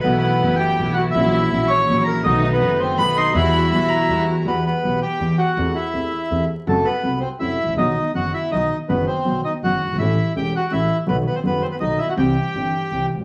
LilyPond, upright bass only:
\new Staff \with { instrumentName = "Upright bass" } { \clef bass \time 3/4 \key b \phrygian \tempo 4 = 163 b,,4 fis,,4 b,,4 | ais,,4 ais,,4 ais,,4 | b,,4 fis,,4 b,,4 | e,4 b,,4 e,4 |
e,16. r8 r32 b,,16. r8 r32 e,16. r8 r32 | e,16. r8 r32 e,16. r8 r32 e,16. r8 r32 | fis,,16. r8 r32 c,16. r8 r32 fis,,16. r16 gis,,32 a,,32 ais,,32 | b,,16. r8 r32 fis,,16. r8 r32 b,,16. r8 r32 |
fis,,16. r8 r32 b,,16. r8 r32 fis,,16. r16 fis,,32 g,,32 gis,,32 | a,,16. r8 r32 e,,16. r8 r32 a,,16. r8 r32 | b,,16. r8 r32 fis,,16. r8 r32 b,,16. r8 r32 | c,16. r8 r32 g,,16. r8 r32 c,16. r16 gis,,32 a,,32 r32 | }